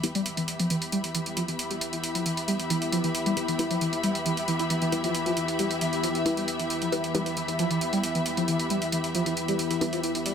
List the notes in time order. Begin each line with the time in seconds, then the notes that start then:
Already playing: E3 B3 E4 G4 E5 B5
0.04 E4 G4 B4, closed hi-hat
0.15 G3, closed hi-hat
0.26 closed hi-hat
0.37 E3, closed hi-hat
0.48 closed hi-hat
0.60 F3, closed hi-hat
0.70 E3, closed hi-hat
0.82 closed hi-hat
0.92 G3, closed hi-hat
1.04 closed hi-hat
1.15 E3, closed hi-hat
1.26 closed hi-hat
1.37 F3, closed hi-hat
1.48 E3, closed hi-hat
1.59 closed hi-hat
1.71 G3, closed hi-hat
1.81 closed hi-hat
1.93 E3, closed hi-hat
2.04 closed hi-hat
2.15 F3, closed hi-hat
2.26 E3, closed hi-hat
2.37 closed hi-hat
2.48 G3, closed hi-hat
2.60 closed hi-hat
2.70 E3 E4 G4 B4, closed hi-hat
2.82 closed hi-hat
2.92 F3, closed hi-hat
3.04 E3, closed hi-hat
3.15 closed hi-hat
3.26 G3, closed hi-hat
3.37 E4 G4 B4, closed hi-hat
3.48 E3, closed hi-hat
3.59 E4 G4 B4, closed hi-hat
3.71 F3, closed hi-hat
3.81 E3, closed hi-hat
3.93 closed hi-hat
4.04 G3, closed hi-hat
4.15 closed hi-hat
4.26 E3, closed hi-hat
4.37 closed hi-hat
4.48 E3, closed hi-hat
4.59 E4, closed hi-hat
4.70 E3, closed hi-hat
4.82 E3, closed hi-hat
4.92 E4 G4 B4, closed hi-hat
5.04 F3, closed hi-hat
5.15 closed hi-hat
5.26 F3, closed hi-hat
5.37 E3, closed hi-hat
5.48 closed hi-hat
5.59 G3, closed hi-hat
5.71 closed hi-hat
5.81 E3, closed hi-hat
5.93 closed hi-hat
6.04 F3, closed hi-hat
6.15 E3, closed hi-hat
6.26 E4 G4 B4, closed hi-hat
6.37 G3, closed hi-hat
6.48 closed hi-hat
6.60 E3, closed hi-hat
6.70 closed hi-hat
6.82 F3, closed hi-hat
6.92 E3 E4 G4 B4, closed hi-hat
7.04 closed hi-hat
7.15 G3 E4 G4 B4, closed hi-hat
7.26 closed hi-hat
7.37 E3, closed hi-hat
7.48 closed hi-hat
7.59 F3, closed hi-hat
7.71 E3, closed hi-hat
7.81 closed hi-hat
7.93 G3, closed hi-hat
8.04 closed hi-hat
8.15 E3, closed hi-hat
8.26 closed hi-hat
8.37 F3, closed hi-hat
8.48 E3, closed hi-hat
8.59 closed hi-hat
8.70 G3, closed hi-hat
8.82 closed hi-hat
8.92 E3, closed hi-hat
9.04 closed hi-hat
9.15 F3, closed hi-hat
9.26 E3, closed hi-hat
9.37 closed hi-hat
9.48 G3, closed hi-hat
9.59 closed hi-hat
9.71 E3, closed hi-hat
9.81 E4 G4 B4, closed hi-hat
9.93 F3, closed hi-hat
10.03 E3, closed hi-hat
10.15 closed hi-hat
10.26 G3, closed hi-hat